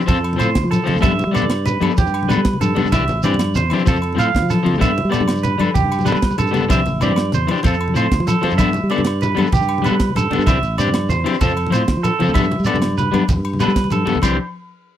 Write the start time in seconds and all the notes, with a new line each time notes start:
0.01 shekere
0.06 F2 F3 C4 F4 A4, kick, ride, low conga, shekere
0.17 low conga
0.24 ride, low agogo
0.33 F3, high conga, low conga
0.38 A2 C4 F4 A4 C5, ride, low agogo, shekere
0.55 D2, kick, snare, ride
0.63 F3, low conga
0.71 A4, snare, ride, high conga, low agogo, shekere
0.84 F3 C4 F4, ride, low conga
0.88 F3 A4
0.95 D2, shekere
1.01 G2 G3 B3 D4 A4 E5, kick, ride, high conga, low agogo, shekere
1.19 ride, low conga, shekere
1.27 G3
1.31 G3 B3 D4 A4 D5, ride, low agogo
1.36 shekere
1.42 G2, high conga, low conga
1.50 snare, ride, low conga, low agogo
1.66 B4, ride, low conga, shekere
1.81 G2 G3 B3 D4 A4, ride, high conga, low agogo
1.91 shekere
1.98 E2 G4, kick, ride, low conga, shekere
2.06 G2, low conga, shekere
2.14 ride, low agogo
2.23 high conga, low conga
2.29 G3 B3 D4 A4 B4, ride, low agogo, shekere
2.37 G3
2.45 kick, snare, ride
2.53 low conga
2.61 G2 A4, ride, high conga, low agogo, shekere
2.75 G2 G3 B3 D4 A4, ride, low conga
2.85 G2, shekere
2.92 C2 E3 D4 G4 E5, muted clean electric guitar stroke, kick, ride, high conga, low agogo, shekere
3.08 A1, ride, low conga, shekere
3.23 G2 E3 C4 D4 G4 D5, ride, low agogo, shekere
3.34 high conga, low conga
3.39 snare, ride, low conga, low agogo
3.55 E2 C5, ride, low conga, shekere
3.70 E3 C4 D4, ride, high conga, low agogo
3.74 G4
3.79 shekere
3.85 F2 F3 C4 F4 A4, kick, ride, shekere
3.90 low conga
3.96 low conga, shekere
4.02 ride, low agogo
4.13 F3 C4, high conga
4.17 A2 F4 A4 F5, ride, low agogo, shekere
4.35 D2, kick, snare, ride
4.42 F3, low conga
4.50 A4, snare, ride, high conga, low agogo, shekere
4.63 F3 C4 F4, ride, low conga
4.74 D2, shekere
4.78 G2 G3 B3 D4 A4 E5, kick, high conga, low conga, low agogo
4.82 ride, shekere
4.98 ride, low conga
5.05 G3
5.10 G3 B3 A4 D5, ride, low agogo
5.14 shekere
5.20 G2, high conga, low conga
5.28 snare, ride, low agogo, shekere
5.37 shekere
5.43 B4, ride, low conga, shekere
5.53 low conga
5.58 G2 G3 D4 A4, ride, high conga, low conga, low agogo
5.74 E2 G4, kick, ride, low conga, shekere
5.83 G2
5.90 ride, low conga, low agogo, shekere
5.99 high conga, low conga, shekere
6.05 G3 B3 D4 A4 B4, ride, low agogo, shekere
6.15 G3, low conga, shekere
6.22 kick, snare, ride, low conga
6.31 low conga, shekere
6.38 G2 A4, ride, high conga, low conga, low agogo, shekere
6.47 low conga, shekere
6.51 G3 B3 D4 A4, ride, low conga
6.55 G2, shekere
6.64 G2
6.69 C2 E3 C4 D4 G4 E5, kick, ride, high conga, low agogo, shekere
6.85 A1, ride, low conga, shekere
7.01 G2 E3 C4 D4 G4 D5, ride, low agogo, shekere
7.09 high conga, low conga
7.16 snare, ride, low conga, low agogo
7.32 E2 C5, ride, low conga, shekere
7.47 E3 D4, muted clean electric guitar stroke, ride, high conga, low agogo
7.52 G4
7.57 shekere
7.63 F2 F3 C4 F4 A4, muted clean electric guitar stroke, kick, ride, low conga, shekere
7.74 shekere
7.80 ride, low agogo
7.88 high conga, low conga
7.94 A2 F3 C4 F4 A4 C5, ride, low agogo, shekere
8.12 D2, kick, snare, ride
8.20 F3, low conga
8.27 A4, ride, high conga, low agogo, shekere
8.42 F3 C4 F4 A4, ride, low conga
8.50 F#2, shekere
8.58 G2 G3 B3 D4 A4 E5, kick, ride, high conga, low agogo, shekere
8.73 ride, low conga, shekere
8.83 G3
8.90 G3 B3 D4 A4 D5, ride, low agogo
8.98 G2, high conga, low conga
9.05 snare, ride, low agogo
9.21 B4, ride, low conga, shekere
9.35 G2 G3 B3 D4 A4, ride, high conga, low agogo
9.47 shekere
9.52 E2 G4, kick, ride, low conga, shekere
9.61 G2, low conga, shekere
9.68 ride, low agogo
9.78 G3, high conga, low conga
9.84 B3 D4 A4 B4, ride, low agogo, shekere
9.91 G3
10.00 kick, snare, ride
10.09 low conga
10.15 G2 A4, snare, ride, high conga, low agogo, shekere
10.31 G2 G3 B3 D4 A4, ride, low conga
10.39 G2, shekere
10.46 C2 E3 C4 D4 G4 E5, kick, ride, high conga, low agogo, shekere
10.63 A1, ride, shekere
10.78 G2 C4 D4 G4 D5, ride, low agogo, shekere
10.87 high conga, low conga
10.94 snare, ride, low conga, low agogo
11.09 E2 C5, ride, low conga, shekere
11.24 E3 C4 D4 G4, ride, high conga, low agogo
11.34 shekere
11.41 F2 F3 C4 F4 A4, kick, ride, low conga, shekere
11.51 low conga
11.57 ride, low agogo
11.66 high conga, low conga
11.71 A2 F3 C4 F4 C5, ride, low agogo, shekere
11.75 muted clean electric guitar stroke
11.88 D2, kick, snare, ride
11.97 F3
12.03 A4, ride, high conga, low agogo, shekere
12.19 F3 C4 F4 A4, ride, low conga
12.28 D2, shekere
12.34 G2 G3 B3 D4 A4 E5, kick, ride, high conga, low conga, low agogo, shekere
12.44 shekere
12.51 ride, low conga
12.59 G3, shekere
12.65 B3 D4 A4 D5, muted clean electric guitar stroke, ride, low agogo, shekere
12.74 G2, high conga, low conga, shekere
12.82 snare, ride, low agogo
12.92 low conga
12.98 B4, ride, low conga, shekere
13.08 G3, low conga
13.13 G2 B3 D4, muted clean electric guitar stroke, ride, high conga, low conga, low agogo, shekere
13.28 E2, muted clean electric guitar stroke, kick, ride, low conga, shekere
13.37 G2, low conga
13.45 ride, low agogo
13.53 high conga, low conga
13.60 G3 B3 D4 A4 B4, ride, low agogo, shekere
13.68 G3, shekere
13.76 kick, snare, ride, shekere
13.84 low conga
13.90 G2 A4, ride, high conga, low conga, low agogo, shekere
14.00 low conga
14.06 G2 G3 B3 A4, ride, low conga
14.15 C#2, low conga
14.22 C2 E3 C4 D4 G4 C5, kick, crash, high conga, low agogo, shekere